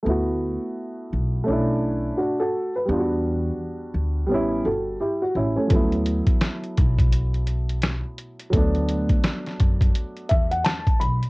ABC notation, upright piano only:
X:1
M:4/4
L:1/16
Q:"Swing 16ths" 1/4=85
K:D
V:1 name="Upright piano"
z12 [DF] [FA]2 B- | B z8 z [FA]2 [EG] F [CE] [A,C]- | [A,C] z12 z3 | z8 z2 e f a2 b2 |]
V:2 name="Upright piano"
[A,B,EF]8 [A,CDE]8 | [G,B,D=F^F]8 [G,B,CE]8 | [=F,^F,A,B,E]16 | [F,A,B,D]16 |]